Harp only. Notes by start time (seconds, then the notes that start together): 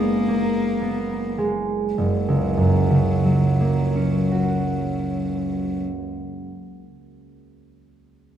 Already playing: F#1 G#3 B3
0.28 A#3
0.82 B3
1.38 G#3
1.98 F#1
2.28 C#2
2.57 F#2
2.91 C#3
3.25 F#3
3.61 A#3
3.95 C#4
4.32 F#4